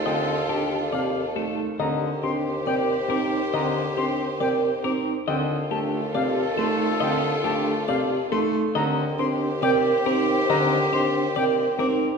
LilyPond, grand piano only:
\new Staff \with { instrumentName = "Grand piano" } { \clef bass \time 4/4 \key ees \lydian \tempo 4 = 138 d8 r4. c8 r8 a8 r8 | d8 r8 c'8 r8 c8 r8 c'8 r8 | d8 r8 c'8 r8 c8 r8 c'8 r8 | d8 r8 a8 r8 c8 r8 a8 r8 |
d8 r8 a8 r8 c8 r8 a8 r8 | d8 r8 c'8 r8 c8 r8 c'8 r8 | d8 r8 c'8 r8 c8 r8 c'8 r8 | }